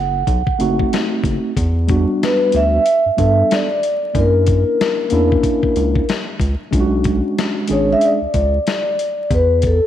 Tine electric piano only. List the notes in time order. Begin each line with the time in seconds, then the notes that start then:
0.59 A3 C4 D#4 F#4
1.87 G3 B3 D4 F#4
3.17 G3 B3 D4 A4
4.13 G#3 C#4 D4 E4
4.20 A#3
5.10 A#3 C#4 D4 E4
6.71 G#3 C#4 D4 F4
6.80 F#4
7.68 G#3 C#4 D4 G#4